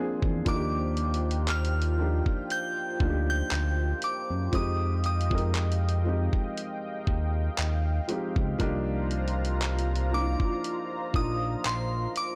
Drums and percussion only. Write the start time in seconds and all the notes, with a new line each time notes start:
0.22 kick
0.46 kick, closed hi-hat
0.97 closed hi-hat
1.14 closed hi-hat
1.31 closed hi-hat
1.48 clap, closed hi-hat
1.65 closed hi-hat
1.82 closed hi-hat
2.26 kick
2.50 closed hi-hat
3.00 kick
3.51 clap, closed hi-hat
4.02 closed hi-hat
4.53 kick, closed hi-hat
5.04 closed hi-hat
5.21 closed hi-hat
5.31 kick
5.38 closed hi-hat
5.55 clap, closed hi-hat
5.72 closed hi-hat
5.89 closed hi-hat
6.33 kick
6.58 closed hi-hat
7.07 kick
7.58 clap, closed hi-hat
8.09 closed hi-hat
8.36 kick
8.60 kick, closed hi-hat
9.11 closed hi-hat
9.28 closed hi-hat
9.45 closed hi-hat
9.62 clap, closed hi-hat
9.79 closed hi-hat
9.96 closed hi-hat
10.40 kick
10.64 closed hi-hat
11.14 kick
11.65 clap, closed hi-hat
12.16 closed hi-hat